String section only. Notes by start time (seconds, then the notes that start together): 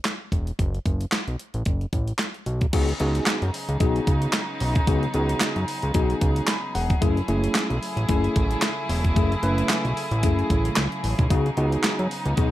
2.73 C#3 F#3 B3 D#4 G#4
7.02 C#3 A3 E4
11.30 B3 D#4